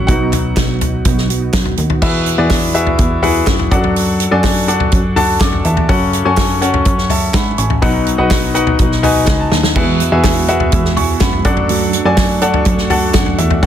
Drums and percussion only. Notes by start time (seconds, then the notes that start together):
0.08 kick, closed hi-hat
0.33 clap, closed hi-hat, floor tom
0.57 kick, snare, clap, closed hi-hat
0.81 closed hi-hat, floor tom
1.05 kick, closed hi-hat
1.18 snare
1.30 closed hi-hat
1.53 kick, snare, clap, closed hi-hat
1.65 floor tom
1.77 closed hi-hat
1.90 floor tom
2.02 kick, crash
2.26 hi-hat pedal, open hi-hat
2.50 kick, snare, clap, hi-hat pedal, open hi-hat
2.75 hi-hat pedal, open hi-hat
2.87 floor tom
2.98 kick, hi-hat pedal, open hi-hat
3.23 floor tom, hi-hat pedal, open hi-hat
3.47 kick, snare, clap, hi-hat pedal, open hi-hat
3.59 floor tom
3.71 kick, hi-hat pedal, open hi-hat
3.84 floor tom
3.96 hi-hat pedal, open hi-hat
4.20 hi-hat pedal, open hi-hat
4.44 kick, snare, clap, hi-hat pedal, open hi-hat
4.68 hi-hat pedal, open hi-hat
4.80 floor tom
4.92 kick, hi-hat pedal, open hi-hat
5.16 floor tom, hi-hat pedal, open hi-hat
5.40 kick, snare, clap, hi-hat pedal, open hi-hat
5.53 floor tom
5.65 hi-hat pedal, open hi-hat
5.77 floor tom
5.89 kick, hi-hat pedal, open hi-hat
6.13 hi-hat pedal, open hi-hat
6.37 kick, snare, clap, hi-hat pedal, open hi-hat
6.62 hi-hat pedal, open hi-hat
6.74 floor tom
6.85 kick, hi-hat pedal, open hi-hat
6.98 snare
7.10 floor tom, hi-hat pedal, open hi-hat
7.34 kick, snare, clap, hi-hat pedal, open hi-hat
7.58 hi-hat pedal, open hi-hat
7.70 floor tom
7.82 kick, hi-hat pedal, open hi-hat
8.07 hi-hat pedal, open hi-hat
8.31 kick, snare, clap, hi-hat pedal, open hi-hat
8.55 hi-hat pedal, open hi-hat
8.67 floor tom
8.79 kick, hi-hat pedal, open hi-hat
8.92 snare
9.03 floor tom, hi-hat pedal, open hi-hat
9.27 kick, snare, clap
9.52 snare
9.63 snare
9.76 kick, crash
10.00 hi-hat pedal, open hi-hat
10.24 kick, snare, clap, hi-hat pedal, open hi-hat
10.48 hi-hat pedal, open hi-hat
10.60 floor tom
10.72 kick, hi-hat pedal, open hi-hat
10.85 snare
10.97 floor tom, hi-hat pedal, open hi-hat
11.20 kick, snare, clap, hi-hat pedal, open hi-hat
11.33 floor tom
11.45 kick, hi-hat pedal, open hi-hat
11.57 floor tom
11.69 hi-hat pedal, open hi-hat
11.93 hi-hat pedal, open hi-hat
12.17 kick, snare, clap, hi-hat pedal, open hi-hat
12.41 hi-hat pedal, open hi-hat
12.54 floor tom
12.65 kick, hi-hat pedal, open hi-hat
12.78 snare
12.90 floor tom, hi-hat pedal, open hi-hat
13.14 kick, snare, clap, hi-hat pedal, open hi-hat
13.26 floor tom
13.38 hi-hat pedal, open hi-hat
13.50 floor tom
13.63 kick, hi-hat pedal, open hi-hat